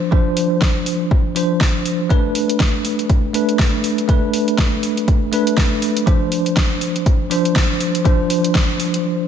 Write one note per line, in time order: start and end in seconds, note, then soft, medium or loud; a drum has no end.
0.11 1.33 F3 medium
0.11 1.33 D4 medium
0.11 1.34 C5 loud
0.11 kick loud
0.37 open hi-hat loud
0.62 kick loud
0.62 snare loud
0.86 open hi-hat loud
1.11 kick loud
1.35 2.07 F3 medium
1.35 2.08 D4 medium
1.35 2.08 C5 medium
1.35 open hi-hat loud
1.61 kick loud
1.61 snare loud
1.86 open hi-hat loud
2.09 3.31 A3 medium
2.09 3.32 D4 medium
2.09 3.32 B4 loud
2.09 kick loud
2.09 closed hi-hat soft
2.35 open hi-hat loud
2.50 closed hi-hat medium
2.60 kick loud
2.60 snare loud
2.60 closed hi-hat medium
2.85 open hi-hat loud
2.99 closed hi-hat medium
3.10 kick loud
3.10 closed hi-hat soft
3.33 4.06 A3 medium
3.33 4.06 D4 medium
3.33 4.07 B4 medium
3.33 open hi-hat loud
3.49 closed hi-hat medium
3.59 kick loud
3.59 snare loud
3.59 closed hi-hat soft
3.84 open hi-hat loud
3.98 closed hi-hat medium
4.08 5.30 A3 medium
4.08 5.30 D4 medium
4.08 5.31 B4 loud
4.08 kick loud
4.08 closed hi-hat medium
4.33 open hi-hat loud
4.48 closed hi-hat medium
4.58 kick loud
4.58 snare loud
4.58 closed hi-hat medium
4.83 open hi-hat loud
4.97 closed hi-hat medium
5.08 kick loud
5.08 closed hi-hat medium
5.32 6.04 A3 medium
5.32 6.05 D4 medium
5.32 6.05 B4 medium
5.32 open hi-hat loud
5.47 closed hi-hat medium
5.57 kick loud
5.57 snare loud
5.57 closed hi-hat soft
5.82 open hi-hat loud
5.97 closed hi-hat medium
6.06 7.28 F3 medium
6.06 7.29 D4 medium
6.06 7.29 C5 loud
6.06 kick loud
6.06 closed hi-hat medium
6.32 open hi-hat loud
6.46 closed hi-hat medium
6.57 kick loud
6.57 snare loud
6.57 closed hi-hat medium
6.81 open hi-hat loud
6.96 closed hi-hat medium
7.06 kick loud
7.06 closed hi-hat medium
7.30 8.02 F3 medium
7.30 8.03 D4 medium
7.30 8.03 C5 medium
7.30 open hi-hat loud
7.45 closed hi-hat medium
7.56 kick loud
7.56 snare loud
7.56 closed hi-hat medium
7.80 open hi-hat loud
7.95 closed hi-hat medium
8.04 9.26 F3 medium
8.04 9.27 D4 medium
8.04 9.27 C5 loud
8.04 kick loud
8.04 closed hi-hat medium
8.30 open hi-hat loud
8.44 closed hi-hat medium
8.55 kick loud
8.55 snare loud
8.55 closed hi-hat medium
8.80 open hi-hat loud
8.94 closed hi-hat medium